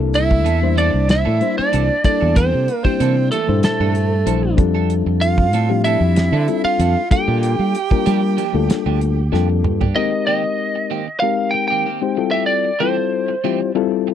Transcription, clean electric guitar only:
0.30 muted clean electric guitar stroke
0.45 E3 A#3 D4 A4
0.61 muted clean electric guitar stroke
0.76 E3 A#3 D4 A4
0.93 muted clean electric guitar stroke
1.08 muted clean electric guitar stroke
1.25 E3 A#3 D4 A4
1.40 muted clean electric guitar stroke
1.72 E3 A#3 D4 A4
1.89 muted clean electric guitar stroke
2.05 muted clean electric guitar stroke
2.21 A#3 D4 A4
2.53 muted clean electric guitar stroke
2.85 muted clean electric guitar stroke
3.00 E3 A#3 D4 A4
3.17 muted clean electric guitar stroke
3.32 E3 A#3 D4 A4
3.48 muted clean electric guitar stroke
3.64 muted clean electric guitar stroke
3.81 E3 A#3 D4 A4
3.95 muted clean electric guitar stroke
4.26 E3 A#3 D4 A4
4.43 muted clean electric guitar stroke
4.57 muted clean electric guitar stroke
4.75 C4 D4 A4
5.07 muted clean electric guitar stroke
5.39 muted clean electric guitar stroke
5.54 G3 C4 D4 A4
5.71 muted clean electric guitar stroke
5.85 G3 C4 D4 A4
6.16 muted clean electric guitar stroke
6.33 G3 C4 D4 A4
6.48 muted clean electric guitar stroke
6.80 G3 C4 D4 A4
6.96 muted clean electric guitar stroke
7.11 muted clean electric guitar stroke
7.28 A#3 D4 G4
7.60 muted clean electric guitar stroke
7.90 muted clean electric guitar stroke
8.06 F3 A#3 D4 G4
8.22 muted clean electric guitar stroke
8.37 F3 A#3 D4 G4
8.54 muted clean electric guitar stroke
8.69 muted clean electric guitar stroke
8.86 F3 A#3 D4 G4
9.01 muted clean electric guitar stroke
9.32 F3 A#3 D4 G4
9.49 muted clean electric guitar stroke
9.65 muted clean electric guitar stroke
9.81 A#3 D4 G4
9.96 D#3 A#3 C4 G4
10.12 muted clean electric guitar stroke
10.27 D#3 A#3 C4 G4
10.43 muted clean electric guitar stroke
10.76 muted clean electric guitar stroke
10.90 D#3 A#3 C4 G4
11.08 muted clean electric guitar stroke
11.23 muted clean electric guitar stroke
11.54 muted clean electric guitar stroke
11.70 D#3 A#3 C4 G4
11.86 D#3 A#3 C4 G4
12.02 muted clean electric guitar stroke
12.17 muted clean electric guitar stroke
12.33 A3 C4 G4
12.65 muted clean electric guitar stroke
12.80 E3 A3 C4 G4
12.97 muted clean electric guitar stroke
13.29 muted clean electric guitar stroke
13.44 E3 A3 C4 G4
13.60 muted clean electric guitar stroke
13.76 muted clean electric guitar stroke
14.07 muted clean electric guitar stroke

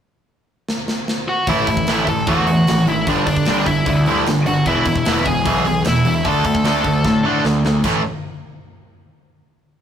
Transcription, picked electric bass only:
1.47 A1
1.87 A1
2.07 A1
2.27 E2
2.68 G#1
3.07 G1
3.48 G1
3.66 G1
3.86 D2
4.26 G1
4.66 E1
5.07 E1
5.26 E1
5.46 B1
5.86 E1
6.25 D2
6.65 D2
6.85 D2
7.05 A2
7.45 D2
7.84 A1

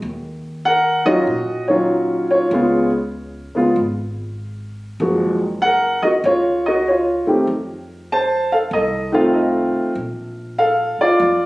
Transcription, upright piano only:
0.65 A#4 F#5
1.05 D#3 F#3 C#4 F4 F#4 D#5
1.68 D#3 F#3 C#4 F4 C#5
2.31 F4 C#5
2.52 C#3 G#3 B3 F4
3.55 C#3 G#3 B3 F4
5.00 F3 G#3 A#3 F#4
5.62 A#4 F#5
6.03 F#4 D#5
6.25 F4 C#5
6.66 F#4 D#5
6.88 F4 C#5
7.27 D#3 A3 C4 G4
8.12 C5 A5
8.52 A4 F5
8.73 A4 D#5
9.12 D#3 A3 C4 F4 A4 F5
9.34 A4 D#5
10.59 A4 F5
11.01 F4 D5

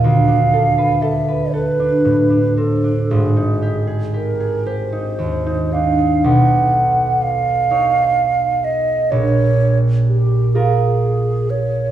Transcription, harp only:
Already playing: F4
0.04 D2
0.28 D4
0.53 A4
0.78 B4
1.02 A4
1.28 B4
1.54 A4
1.80 D4
2.05 A2
2.30 D4
2.57 C4
2.84 D4
3.11 G#1
3.37 D#4
3.62 G4
3.87 G#4
4.14 G4
4.40 G#4
4.66 G4
4.92 D#4
5.19 D#2
5.46 D#4
5.74 D4
5.98 D#4
6.24 B1
7.71 D#4 C#5
9.12 A#1
10.55 F4 A#4

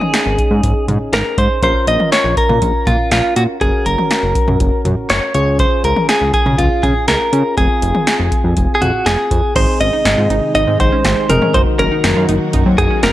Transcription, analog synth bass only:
0.26 G#1
0.51 G#2
0.64 G#1
0.88 G#2
1.13 G#1
1.38 G#2
1.63 A#1
1.87 A#1
2.24 A#1
2.49 A#2
2.62 A#1
2.87 A#2
3.11 A#1
3.36 A#2
3.61 F#1
3.86 F#1
4.23 F#1
4.48 F#2
4.60 F#1
4.85 F#2
5.10 F#1
5.34 C#2
5.84 C#2
6.21 C#2
6.46 C#3
6.59 C#2
6.83 C#3
7.08 C#2
7.33 C#3
7.58 F1
7.82 F1
8.19 F1
8.44 F2
8.57 F1
8.81 F2
9.06 F1
9.31 F2
9.56 G#1
9.80 G#1
10.05 G#1
10.18 G#2
10.30 G#1
10.55 G#1
10.67 G#2
10.80 G#1
11.04 G#1
11.29 F1
11.54 F#1
11.79 F#1
12.04 F#1
12.16 F#2
12.29 F#1
12.54 F#1
12.66 F#2
12.78 F#1
13.03 F#1

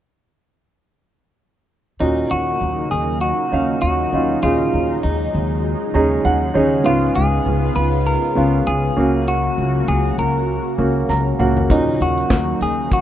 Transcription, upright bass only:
2.00 D#2
2.31 D#2
2.61 D#2
2.92 D#2
3.52 D#2
3.83 D#2
4.13 D#2
4.43 D#2
4.74 D#2
5.04 D#2
5.35 D#2
5.95 D#2
6.25 D#2
6.55 D#2
6.86 C#2
7.16 C#2
7.46 C#2
7.76 C#2
8.37 C#2
8.68 C#2
8.97 C#2
9.58 C#2
9.88 C#2
10.18 C#2
10.78 C#2
11.09 C#2
11.40 C#2
11.70 D#2
12.00 D#2
12.30 D#2
12.61 D#2

